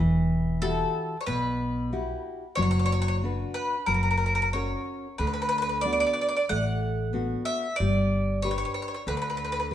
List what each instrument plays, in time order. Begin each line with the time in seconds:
Already playing: nylon-string guitar E3
0.00 upright bass E1
0.62 nylon-string guitar E4 F#4 G4, mandolin A4
1.21 mandolin C#5
1.26 upright bass B1, nylon-string guitar B2, mandolin B4
1.92 nylon-string guitar E4 F#4 G4
2.55 upright bass F#1, nylon-string guitar F#3, mandolin C#5
2.62 mandolin C#5
2.71 mandolin C#5
2.79 mandolin C#5
2.86 mandolin C#5
2.92 mandolin C#5
3.02 mandolin C#5
3.08 mandolin C#5
3.23 nylon-string guitar D4 F#4 B4
3.54 mandolin B4
3.86 upright bass F#1, nylon-string guitar F#3, mandolin A#4
3.94 mandolin A#4
4.03 mandolin A#4
4.11 mandolin A#4
4.18 mandolin A#4
4.26 mandolin A#4
4.35 mandolin A#4
4.42 mandolin A#4
4.53 nylon-string guitar C#4 F#4 A#4, mandolin C#5
5.18 upright bass D2, nylon-string guitar D3, mandolin B4
5.27 mandolin B4
5.34 mandolin B4
5.42 mandolin B4
5.49 mandolin B4
5.58 mandolin B4
5.69 mandolin B4
5.81 nylon-string guitar B3 D4, mandolin D5
5.86 nylon-string guitar F#4
5.93 mandolin D5
6.00 mandolin D5
6.07 mandolin D5
6.13 mandolin D5
6.21 mandolin D5
6.29 mandolin D5
6.36 mandolin D5
6.49 upright bass A1, nylon-string guitar A3, mandolin F#5
7.13 nylon-string guitar B3 D4 F#4
7.45 mandolin E5
7.76 nylon-string guitar G3, mandolin D5
7.80 upright bass G1
8.42 nylon-string guitar D4 G4 B4, mandolin C#5
8.51 mandolin C#5
8.58 mandolin C#5
8.65 mandolin C#5
8.74 mandolin C#5
8.82 mandolin C#5
8.88 mandolin C#5
8.94 mandolin C#5
9.07 upright bass D2, nylon-string guitar D3, mandolin B4
9.17 mandolin B4
9.22 mandolin B4
9.30 mandolin B4
9.37 mandolin B4
9.45 mandolin B4
9.52 mandolin B4
9.60 mandolin B4
9.71 nylon-string guitar D4 G4 B4